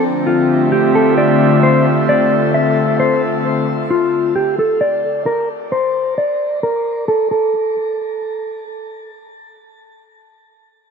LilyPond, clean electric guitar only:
\new Staff \with { instrumentName = "Clean electric guitar" } { \time 4/4 \key d \minor \tempo 4 = 132 r8 f'4 g'8 a'8 d''4 c''8 | r8 d''4 e''4 c''8 r4 | r8 f'4 g'8 a'8 d''4 bes'8 | r8 c''4 d''4 bes'4 a'8 |
a'2. r4 | r1 | }